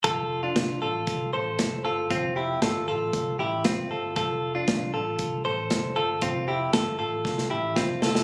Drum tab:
HH |x---x---x---x---|x---x---x---x---|x---x---x---x---|x---x-----------|
SD |----o-------o---|----o-------o---|----o-------o---|----o---oo--o-oo|
BD |o---o---o---o---|o---o---o---o---|o---o---o---o---|o---o---o---o---|